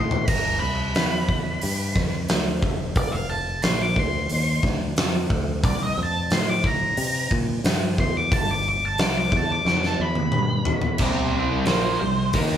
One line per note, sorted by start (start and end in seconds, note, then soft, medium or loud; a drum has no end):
0.00 0.27 A2 medium
0.00 0.28 C6 medium
0.11 floor tom medium
0.28 0.60 G1 medium
0.28 0.59 A#5 medium
0.28 kick loud
0.28 open hi-hat medium
0.28 crash medium
0.60 0.94 C2 medium
0.60 2.58 B5 loud
0.95 1.59 E2 medium
0.95 snare loud
0.95 open hi-hat soft
1.29 kick medium
1.61 1.95 G2 medium
1.61 open hi-hat medium
1.96 2.28 F2 medium
1.96 kick medium
1.96 snare soft
2.28 2.62 D2 medium
2.28 snare loud
2.28 open hi-hat medium
2.62 2.96 E1 medium
2.62 kick medium
2.96 3.60 F1 medium
2.96 3.13 D5 loud
2.96 kick loud
2.96 open hi-hat medium
3.12 3.29 F5 loud
3.29 3.62 A5 medium
3.62 3.95 A#1 medium
3.62 3.82 C6 loud
3.62 snare loud
3.62 open hi-hat medium
3.82 3.97 D6 medium
3.96 4.29 D2 medium
3.96 4.63 C6 loud
3.96 kick medium
4.29 4.63 D#2 medium
4.29 open hi-hat medium
4.63 4.96 D2 loud
4.63 kick medium
4.63 snare soft
4.97 5.30 F2 loud
4.97 snare loud
4.97 open hi-hat medium
5.30 5.63 D2 loud
5.30 kick medium
5.64 5.96 C2 medium
5.64 5.81 D5 loud
5.64 kick loud
5.64 open hi-hat medium
5.83 5.98 D#5 medium
5.98 6.30 F2 loud
6.03 6.33 A5 medium
6.30 6.95 A2 medium
6.30 6.49 C6 medium
6.30 snare loud
6.30 open hi-hat medium
6.49 6.65 D6 loud
6.64 7.31 A#5 medium
6.64 kick medium
6.97 7.30 C3 medium
6.97 open hi-hat medium
7.31 7.64 A#2 medium
7.31 kick medium
7.64 7.97 G2 loud
7.64 snare loud
7.64 open hi-hat medium
7.98 8.31 E2 medium
7.98 8.17 C6 loud
7.98 kick medium
8.17 8.33 D6 loud
8.32 8.96 G1 medium
8.32 8.49 A5 loud
8.32 kick loud
8.32 open hi-hat medium
8.51 8.66 D6 loud
8.69 8.83 D6 medium
8.86 9.00 A5 loud
8.98 9.31 C2 loud
8.98 9.17 D6 loud
8.98 snare loud
8.98 open hi-hat medium
9.18 9.33 D6 loud
9.32 9.64 E2 medium
9.32 kick medium
9.37 9.51 A5 medium
9.52 9.66 D6 loud
9.65 9.98 F2 medium
9.65 9.83 D6 loud
9.65 snare medium
9.83 10.01 A5 medium
9.83 snare medium
10.00 10.32 E2 medium
10.00 10.98 B5 loud
10.15 high tom medium
10.32 10.66 G2 loud
10.32 mid tom medium
10.65 10.99 E2 loud
10.65 floor tom loud
10.82 floor tom medium
10.98 11.63 C2 medium
10.98 11.66 C3 medium
10.98 11.67 G3 loud
10.98 11.67 C4 loud
10.98 11.35 A#4 medium
10.98 11.34 D5 medium
10.98 kick medium
10.98 crash medium
11.35 11.66 E4 medium
11.35 11.65 C5 medium
11.66 11.99 A#1 medium
11.66 12.00 A#2 medium
11.66 12.00 F3 medium
11.66 12.00 A#3 loud
11.66 12.32 C5 medium
11.66 snare loud
11.66 open hi-hat soft
12.01 12.33 C2 medium
12.01 12.28 C3 medium
12.01 12.28 G3 medium
12.33 12.57 D#2 medium
12.33 12.57 D#3 medium
12.33 12.57 A#3 medium
12.33 12.57 D#4 loud
12.33 kick loud
12.33 open hi-hat medium